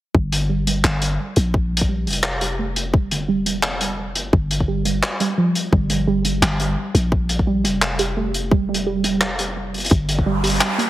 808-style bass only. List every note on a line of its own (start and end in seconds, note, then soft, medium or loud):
0.15 0.83 G1 medium
0.84 1.18 G1 medium
1.37 2.08 A#1 loud
2.07 4.17 F1 medium
4.16 4.32 G1 medium
4.33 5.02 G1 medium
5.73 6.41 G1 medium
6.42 6.76 G1 medium
6.95 7.66 A#1 loud
7.64 9.76 F1 medium
9.74 9.90 G1 medium
9.91 10.60 G1 medium